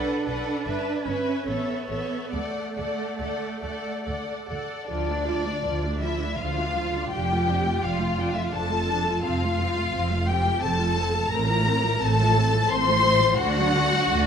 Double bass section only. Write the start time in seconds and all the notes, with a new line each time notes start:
0.28 B1
0.67 G1
1.06 G1
1.47 A1
1.89 A1
2.33 D2
2.78 D2
3.19 D2
3.63 D2
4.06 D2
4.49 D2
4.91 D2
5.64 D2
6.39 D2
7.12 F1
7.83 F1
8.53 F1
9.25 F1
9.93 F1
10.63 F1
11.31 A1
12.00 A1
12.69 A1
13.39 D2
14.11 D2